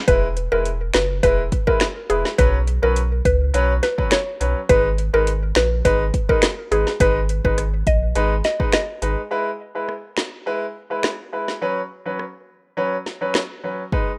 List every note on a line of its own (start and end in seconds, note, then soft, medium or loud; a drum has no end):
0.08 0.48 E1 loud
0.08 0.25 G#3 loud
0.08 0.25 E4 medium
0.08 0.19 B4 medium
0.08 0.25 B4 loud
0.08 kick loud
0.08 closed hi-hat medium
0.37 closed hi-hat medium
0.52 0.90 E1 loud
0.52 0.68 G#3 medium
0.52 0.68 E4 medium
0.52 0.62 A#4 medium
0.52 0.68 B4 medium
0.65 closed hi-hat medium
0.94 1.21 F#1 medium
0.94 1.06 B4 medium
0.94 finger snap medium
0.94 snare loud
0.94 closed hi-hat medium
1.23 1.49 E1 loud
1.23 1.41 G#3 medium
1.23 1.41 E4 medium
1.23 1.35 B4 medium
1.23 1.41 B4 loud
1.23 kick medium
1.23 closed hi-hat medium
1.52 kick loud
1.52 closed hi-hat medium
1.67 1.83 G#3 medium
1.67 1.83 E4 medium
1.67 1.78 A#4 medium
1.67 1.84 B4 medium
1.67 kick medium
1.80 finger snap loud
1.80 cross-stick loud
1.80 snare loud
1.80 closed hi-hat medium
2.10 2.24 E1 medium
2.10 2.27 G#3 medium
2.10 2.27 E4 medium
2.10 2.21 G#4 medium
2.10 2.27 B4 medium
2.10 closed hi-hat medium
2.25 snare medium
2.38 2.79 B1 loud
2.38 2.56 F#3 loud
2.38 2.56 C#4 medium
2.38 2.50 B4 loud
2.38 2.56 B4 loud
2.38 kick loud
2.38 closed hi-hat medium
2.67 closed hi-hat soft
2.82 3.21 B1 medium
2.82 2.98 F#3 medium
2.82 2.99 C#4 medium
2.82 2.93 A#4 medium
2.82 2.99 B4 medium
2.96 closed hi-hat medium
3.25 3.51 C#2 loud
3.25 3.37 B4 medium
3.25 kick loud
3.25 closed hi-hat medium
3.54 3.80 B1 loud
3.54 3.71 F#3 loud
3.54 3.71 C#4 medium
3.54 3.72 B4 loud
3.54 closed hi-hat medium
3.83 3.95 B4 medium
3.83 snare medium
3.83 closed hi-hat medium
3.98 4.14 F#3 medium
3.98 4.14 C#4 medium
3.98 4.14 B4 medium
3.98 kick medium
4.11 4.53 C#5 medium
4.11 finger snap medium
4.11 cross-stick medium
4.11 snare loud
4.11 closed hi-hat medium
4.40 4.54 B1 medium
4.40 4.58 F#3 medium
4.40 4.58 C#4 medium
4.40 4.58 B4 medium
4.40 closed hi-hat medium
4.69 5.10 G#1 loud
4.69 4.87 G#3 loud
4.69 4.87 D#4 medium
4.69 4.81 B4 loud
4.69 4.87 B4 loud
4.69 kick loud
4.69 closed hi-hat medium
4.98 closed hi-hat medium
5.13 5.52 G#1 medium
5.13 5.29 G#3 medium
5.13 5.29 D#4 medium
5.13 5.24 A#4 medium
5.13 5.30 B4 medium
5.27 closed hi-hat medium
5.55 5.82 A#1 loud
5.55 5.68 B4 medium
5.55 finger snap medium
5.55 snare loud
5.55 closed hi-hat medium
5.85 6.11 G#1 loud
5.85 6.02 G#3 loud
5.85 6.02 D#4 medium
5.85 5.97 B4 medium
5.85 6.02 B4 loud
5.85 kick medium
5.85 closed hi-hat medium
6.14 kick loud
6.14 closed hi-hat medium
6.29 6.45 G#3 medium
6.29 6.45 D#4 medium
6.29 6.40 A#4 medium
6.29 6.45 B4 medium
6.29 kick medium
6.42 finger snap medium
6.42 cross-stick loud
6.42 snare loud
6.42 closed hi-hat medium
6.71 6.85 G#1 loud
6.71 6.89 G#3 medium
6.71 6.89 D#4 medium
6.71 6.83 G#4 medium
6.71 6.89 B4 medium
6.71 closed hi-hat medium
6.87 snare medium
7.00 7.40 G#1 loud
7.00 7.17 G#3 loud
7.00 7.18 D#4 medium
7.00 7.12 B4 loud
7.00 7.18 B4 loud
7.00 kick loud
7.00 closed hi-hat medium
7.29 closed hi-hat medium
7.44 7.83 G#1 loud
7.44 7.60 G#3 medium
7.44 7.60 D#4 medium
7.44 7.55 B4 medium
7.44 7.60 B4 medium
7.44 kick medium
7.58 cross-stick medium
7.58 closed hi-hat medium
7.87 8.13 A#1 medium
7.87 7.99 D#5 medium
7.87 kick medium
7.87 closed hi-hat medium
8.15 8.42 G#1 loud
8.15 8.33 G#3 loud
8.15 8.33 D#4 medium
8.15 8.33 B4 loud
8.15 closed hi-hat medium
8.44 8.56 D#5 medium
8.44 snare medium
8.44 closed hi-hat medium
8.59 8.75 G#3 medium
8.59 8.76 D#4 medium
8.59 8.76 B4 medium
8.59 kick medium
8.72 9.15 D#5 medium
8.72 finger snap medium
8.72 cross-stick medium
8.72 snare loud
8.72 closed hi-hat medium
9.02 9.16 G#1 medium
9.02 9.19 G#3 medium
9.02 9.19 D#4 medium
9.02 9.20 B4 medium
9.02 closed hi-hat medium
9.31 9.48 G#3 medium
9.31 9.48 E4 medium
9.31 9.48 B4 loud
9.75 9.91 G#3 medium
9.75 9.91 E4 medium
9.75 9.91 B4 medium
9.89 cross-stick medium
10.17 finger snap medium
10.17 snare loud
10.46 10.64 G#3 medium
10.46 10.64 E4 medium
10.46 10.64 B4 loud
10.90 11.06 G#3 medium
10.90 11.06 E4 medium
10.90 11.06 B4 medium
11.03 finger snap medium
11.03 cross-stick medium
11.03 snare loud
11.32 11.50 G#3 medium
11.32 11.50 E4 medium
11.32 11.50 B4 medium
11.48 snare medium
11.62 11.79 F#3 medium
11.62 11.79 C#4 medium
11.62 11.79 B4 loud
12.06 12.22 F#3 medium
12.06 12.22 C#4 medium
12.06 12.22 B4 medium
12.19 cross-stick medium
12.77 12.94 F#3 medium
12.77 12.94 C#4 medium
12.77 12.95 B4 loud
13.06 snare medium
13.21 13.37 F#3 medium
13.21 13.37 C#4 medium
13.21 13.37 B4 medium
13.34 finger snap medium
13.34 cross-stick medium
13.34 snare loud
13.64 13.81 F#3 medium
13.64 13.81 C#4 medium
13.64 13.81 B4 medium
13.92 14.10 G#3 medium
13.92 14.10 D#4 medium
13.92 14.10 B4 loud
13.92 kick loud